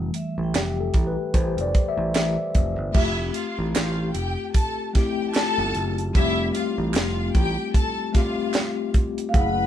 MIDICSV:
0, 0, Header, 1, 7, 480
1, 0, Start_track
1, 0, Tempo, 798935
1, 1772, Time_signature, 4, 2, 24, 8
1, 5807, End_track
2, 0, Start_track
2, 0, Title_t, "Vibraphone"
2, 0, Program_c, 0, 11
2, 5581, Note_on_c, 0, 77, 84
2, 5612, Note_on_c, 0, 78, 104
2, 5614, Note_off_c, 0, 77, 0
2, 5807, Note_off_c, 0, 78, 0
2, 5807, End_track
3, 0, Start_track
3, 0, Title_t, "Violin section"
3, 0, Program_c, 1, 48
3, 1768, Note_on_c, 1, 64, 110
3, 1768, Note_on_c, 1, 76, 122
3, 1962, Note_off_c, 1, 64, 0
3, 1962, Note_off_c, 1, 76, 0
3, 2008, Note_on_c, 1, 65, 79
3, 2011, Note_on_c, 1, 77, 84
3, 2202, Note_off_c, 1, 65, 0
3, 2204, Note_off_c, 1, 77, 0
3, 2240, Note_on_c, 1, 65, 83
3, 2247, Note_on_c, 1, 77, 91
3, 2437, Note_off_c, 1, 65, 0
3, 2441, Note_off_c, 1, 77, 0
3, 2486, Note_on_c, 1, 67, 83
3, 2488, Note_on_c, 1, 79, 94
3, 2681, Note_off_c, 1, 67, 0
3, 2682, Note_off_c, 1, 79, 0
3, 2729, Note_on_c, 1, 69, 85
3, 2730, Note_on_c, 1, 81, 94
3, 2923, Note_off_c, 1, 69, 0
3, 2923, Note_off_c, 1, 81, 0
3, 2976, Note_on_c, 1, 67, 90
3, 2978, Note_on_c, 1, 79, 96
3, 3167, Note_off_c, 1, 67, 0
3, 3168, Note_off_c, 1, 79, 0
3, 3203, Note_on_c, 1, 81, 121
3, 3204, Note_on_c, 1, 69, 118
3, 3564, Note_off_c, 1, 81, 0
3, 3565, Note_off_c, 1, 69, 0
3, 3692, Note_on_c, 1, 64, 122
3, 3692, Note_on_c, 1, 76, 126
3, 3884, Note_off_c, 1, 64, 0
3, 3884, Note_off_c, 1, 76, 0
3, 3935, Note_on_c, 1, 65, 92
3, 3937, Note_on_c, 1, 77, 96
3, 4126, Note_off_c, 1, 65, 0
3, 4127, Note_off_c, 1, 77, 0
3, 4170, Note_on_c, 1, 65, 85
3, 4175, Note_on_c, 1, 77, 97
3, 4363, Note_off_c, 1, 65, 0
3, 4366, Note_off_c, 1, 77, 0
3, 4413, Note_on_c, 1, 67, 95
3, 4416, Note_on_c, 1, 79, 109
3, 4605, Note_off_c, 1, 67, 0
3, 4607, Note_off_c, 1, 79, 0
3, 4654, Note_on_c, 1, 69, 86
3, 4655, Note_on_c, 1, 81, 98
3, 4846, Note_off_c, 1, 69, 0
3, 4846, Note_off_c, 1, 81, 0
3, 4892, Note_on_c, 1, 77, 89
3, 4894, Note_on_c, 1, 65, 84
3, 5348, Note_off_c, 1, 77, 0
3, 5349, Note_off_c, 1, 65, 0
3, 5603, Note_on_c, 1, 71, 92
3, 5606, Note_on_c, 1, 83, 103
3, 5807, Note_off_c, 1, 71, 0
3, 5807, Note_off_c, 1, 83, 0
3, 5807, End_track
4, 0, Start_track
4, 0, Title_t, "Vibraphone"
4, 0, Program_c, 2, 11
4, 90, Note_on_c, 2, 76, 67
4, 261, Note_on_c, 2, 79, 51
4, 1391, Note_off_c, 2, 76, 0
4, 1512, Note_off_c, 2, 79, 0
4, 2250, Note_on_c, 2, 67, 62
4, 3200, Note_on_c, 2, 65, 74
4, 3552, Note_off_c, 2, 67, 0
4, 3684, Note_on_c, 2, 60, 51
4, 4506, Note_off_c, 2, 65, 0
4, 4988, Note_off_c, 2, 60, 0
4, 5807, End_track
5, 0, Start_track
5, 0, Title_t, "Tine electric piano"
5, 0, Program_c, 3, 4
5, 0, Control_c, 3, 64, 127
5, 0, Note_on_c, 3, 52, 60
5, 0, Note_on_c, 3, 55, 50
5, 0, Note_on_c, 3, 57, 60
5, 327, Note_on_c, 3, 67, 83
5, 483, Note_on_c, 3, 69, 87
5, 494, Note_off_c, 3, 67, 0
5, 543, Note_off_c, 3, 52, 0
5, 544, Note_off_c, 3, 55, 0
5, 547, Note_off_c, 3, 57, 0
5, 644, Note_on_c, 3, 71, 94
5, 651, Note_off_c, 3, 69, 0
5, 796, Note_off_c, 3, 71, 0
5, 809, Note_on_c, 3, 72, 100
5, 881, Note_off_c, 3, 72, 0
5, 967, Note_on_c, 3, 74, 92
5, 1118, Note_off_c, 3, 74, 0
5, 1133, Note_on_c, 3, 76, 107
5, 1283, Note_off_c, 3, 76, 0
5, 1290, Note_on_c, 3, 76, 87
5, 1747, Note_off_c, 3, 76, 0
5, 1756, Note_on_c, 3, 57, 72
5, 1765, Note_on_c, 3, 60, 70
5, 1773, Note_on_c, 3, 65, 68
5, 1778, Control_c, 3, 64, 0
5, 1778, Note_on_c, 3, 67, 78
5, 1875, Control_c, 3, 64, 127
5, 2653, Note_off_c, 3, 57, 0
5, 2658, Note_off_c, 3, 60, 0
5, 2661, Note_off_c, 3, 65, 0
5, 2664, Note_off_c, 3, 67, 0
5, 2963, Note_on_c, 3, 57, 96
5, 2971, Note_on_c, 3, 60, 84
5, 2978, Note_on_c, 3, 64, 79
5, 2984, Note_on_c, 3, 67, 96
5, 3634, Note_off_c, 3, 57, 0
5, 3638, Note_off_c, 3, 60, 0
5, 3642, Note_off_c, 3, 64, 0
5, 3645, Note_off_c, 3, 67, 0
5, 3682, Note_on_c, 3, 55, 80
5, 3689, Note_on_c, 3, 60, 85
5, 3700, Note_on_c, 3, 65, 92
5, 3705, Note_on_c, 3, 67, 103
5, 3722, Note_on_c, 3, 57, 91
5, 3733, Note_off_c, 3, 55, 0
5, 4579, Note_off_c, 3, 60, 0
5, 4584, Note_off_c, 3, 65, 0
5, 4587, Note_off_c, 3, 67, 0
5, 4596, Note_off_c, 3, 57, 0
5, 4879, Note_on_c, 3, 57, 91
5, 4886, Note_on_c, 3, 60, 87
5, 4894, Note_on_c, 3, 65, 82
5, 4899, Note_on_c, 3, 67, 98
5, 5552, Note_off_c, 3, 57, 0
5, 5555, Note_off_c, 3, 60, 0
5, 5559, Note_off_c, 3, 65, 0
5, 5562, Note_off_c, 3, 67, 0
5, 5594, Note_on_c, 3, 57, 80
5, 5602, Note_on_c, 3, 61, 74
5, 5608, Note_on_c, 3, 64, 71
5, 5618, Note_on_c, 3, 68, 87
5, 5620, Control_c, 3, 64, 0
5, 5720, Control_c, 3, 64, 127
5, 5807, Note_off_c, 3, 57, 0
5, 5807, Note_off_c, 3, 61, 0
5, 5807, Note_off_c, 3, 64, 0
5, 5807, Note_off_c, 3, 68, 0
5, 5807, End_track
6, 0, Start_track
6, 0, Title_t, "Picked electric bass"
6, 0, Program_c, 4, 34
6, 227, Note_on_c, 4, 33, 80
6, 316, Note_off_c, 4, 33, 0
6, 324, Note_on_c, 4, 29, 88
6, 537, Note_off_c, 4, 29, 0
6, 567, Note_on_c, 4, 33, 78
6, 690, Note_off_c, 4, 33, 0
6, 805, Note_on_c, 4, 33, 102
6, 929, Note_off_c, 4, 33, 0
6, 944, Note_on_c, 4, 29, 85
6, 1035, Note_off_c, 4, 29, 0
6, 1186, Note_on_c, 4, 33, 97
6, 1276, Note_off_c, 4, 33, 0
6, 1291, Note_on_c, 4, 33, 81
6, 1413, Note_off_c, 4, 33, 0
6, 1531, Note_on_c, 4, 29, 91
6, 1653, Note_off_c, 4, 29, 0
6, 1668, Note_on_c, 4, 31, 86
6, 1757, Note_off_c, 4, 31, 0
6, 1769, Note_on_c, 4, 29, 111
6, 1981, Note_off_c, 4, 29, 0
6, 2155, Note_on_c, 4, 33, 82
6, 2242, Note_off_c, 4, 33, 0
6, 2258, Note_on_c, 4, 33, 94
6, 2466, Note_off_c, 4, 33, 0
6, 2491, Note_on_c, 4, 29, 81
6, 2614, Note_off_c, 4, 29, 0
6, 3353, Note_on_c, 4, 31, 92
6, 3452, Note_off_c, 4, 31, 0
6, 3455, Note_on_c, 4, 30, 84
6, 3665, Note_off_c, 4, 30, 0
6, 3694, Note_on_c, 4, 29, 107
6, 3903, Note_off_c, 4, 29, 0
6, 4075, Note_on_c, 4, 33, 84
6, 4162, Note_off_c, 4, 33, 0
6, 4173, Note_on_c, 4, 29, 91
6, 4383, Note_off_c, 4, 29, 0
6, 4417, Note_on_c, 4, 33, 93
6, 4537, Note_off_c, 4, 33, 0
6, 5614, Note_on_c, 4, 30, 104
6, 5807, Note_off_c, 4, 30, 0
6, 5807, End_track
7, 0, Start_track
7, 0, Title_t, "Drums"
7, 84, Note_on_c, 9, 42, 74
7, 144, Note_off_c, 9, 42, 0
7, 328, Note_on_c, 9, 39, 82
7, 328, Note_on_c, 9, 42, 106
7, 334, Note_on_c, 9, 38, 123
7, 388, Note_off_c, 9, 39, 0
7, 388, Note_off_c, 9, 42, 0
7, 394, Note_off_c, 9, 38, 0
7, 563, Note_on_c, 9, 42, 76
7, 567, Note_on_c, 9, 36, 96
7, 623, Note_off_c, 9, 42, 0
7, 627, Note_off_c, 9, 36, 0
7, 805, Note_on_c, 9, 42, 96
7, 806, Note_on_c, 9, 36, 91
7, 865, Note_off_c, 9, 42, 0
7, 866, Note_off_c, 9, 36, 0
7, 950, Note_on_c, 9, 42, 50
7, 1010, Note_off_c, 9, 42, 0
7, 1049, Note_on_c, 9, 42, 73
7, 1050, Note_on_c, 9, 36, 95
7, 1109, Note_off_c, 9, 42, 0
7, 1110, Note_off_c, 9, 36, 0
7, 1288, Note_on_c, 9, 42, 91
7, 1292, Note_on_c, 9, 39, 73
7, 1296, Note_on_c, 9, 38, 106
7, 1348, Note_off_c, 9, 42, 0
7, 1352, Note_off_c, 9, 39, 0
7, 1356, Note_off_c, 9, 38, 0
7, 1530, Note_on_c, 9, 42, 69
7, 1533, Note_on_c, 9, 36, 91
7, 1590, Note_off_c, 9, 42, 0
7, 1593, Note_off_c, 9, 36, 0
7, 1768, Note_on_c, 9, 49, 91
7, 1771, Note_on_c, 9, 36, 104
7, 1828, Note_off_c, 9, 49, 0
7, 1831, Note_off_c, 9, 36, 0
7, 2008, Note_on_c, 9, 42, 80
7, 2068, Note_off_c, 9, 42, 0
7, 2252, Note_on_c, 9, 42, 106
7, 2254, Note_on_c, 9, 39, 86
7, 2258, Note_on_c, 9, 38, 124
7, 2312, Note_off_c, 9, 42, 0
7, 2314, Note_off_c, 9, 39, 0
7, 2318, Note_off_c, 9, 38, 0
7, 2491, Note_on_c, 9, 42, 74
7, 2551, Note_off_c, 9, 42, 0
7, 2730, Note_on_c, 9, 42, 98
7, 2731, Note_on_c, 9, 36, 88
7, 2790, Note_off_c, 9, 42, 0
7, 2791, Note_off_c, 9, 36, 0
7, 2974, Note_on_c, 9, 42, 80
7, 2976, Note_on_c, 9, 36, 95
7, 2977, Note_on_c, 9, 38, 37
7, 3034, Note_off_c, 9, 42, 0
7, 3036, Note_off_c, 9, 36, 0
7, 3037, Note_off_c, 9, 38, 0
7, 3208, Note_on_c, 9, 39, 71
7, 3213, Note_on_c, 9, 42, 86
7, 3221, Note_on_c, 9, 38, 116
7, 3268, Note_off_c, 9, 39, 0
7, 3273, Note_off_c, 9, 42, 0
7, 3281, Note_off_c, 9, 38, 0
7, 3452, Note_on_c, 9, 42, 72
7, 3512, Note_off_c, 9, 42, 0
7, 3595, Note_on_c, 9, 42, 50
7, 3655, Note_off_c, 9, 42, 0
7, 3695, Note_on_c, 9, 36, 99
7, 3695, Note_on_c, 9, 42, 75
7, 3755, Note_off_c, 9, 36, 0
7, 3755, Note_off_c, 9, 42, 0
7, 3933, Note_on_c, 9, 42, 78
7, 3993, Note_off_c, 9, 42, 0
7, 4167, Note_on_c, 9, 39, 82
7, 4178, Note_on_c, 9, 42, 102
7, 4184, Note_on_c, 9, 38, 126
7, 4227, Note_off_c, 9, 39, 0
7, 4238, Note_off_c, 9, 42, 0
7, 4244, Note_off_c, 9, 38, 0
7, 4414, Note_on_c, 9, 42, 73
7, 4415, Note_on_c, 9, 36, 87
7, 4475, Note_off_c, 9, 36, 0
7, 4475, Note_off_c, 9, 42, 0
7, 4653, Note_on_c, 9, 36, 98
7, 4655, Note_on_c, 9, 42, 103
7, 4713, Note_off_c, 9, 36, 0
7, 4715, Note_off_c, 9, 42, 0
7, 4894, Note_on_c, 9, 42, 84
7, 4895, Note_on_c, 9, 36, 96
7, 4897, Note_on_c, 9, 38, 37
7, 4954, Note_off_c, 9, 42, 0
7, 4955, Note_off_c, 9, 36, 0
7, 4957, Note_off_c, 9, 38, 0
7, 5127, Note_on_c, 9, 39, 67
7, 5129, Note_on_c, 9, 42, 87
7, 5137, Note_on_c, 9, 38, 116
7, 5187, Note_off_c, 9, 39, 0
7, 5189, Note_off_c, 9, 42, 0
7, 5197, Note_off_c, 9, 38, 0
7, 5372, Note_on_c, 9, 42, 64
7, 5374, Note_on_c, 9, 36, 97
7, 5432, Note_off_c, 9, 42, 0
7, 5434, Note_off_c, 9, 36, 0
7, 5515, Note_on_c, 9, 42, 56
7, 5575, Note_off_c, 9, 42, 0
7, 5612, Note_on_c, 9, 36, 106
7, 5612, Note_on_c, 9, 42, 70
7, 5672, Note_off_c, 9, 36, 0
7, 5672, Note_off_c, 9, 42, 0
7, 5807, End_track
0, 0, End_of_file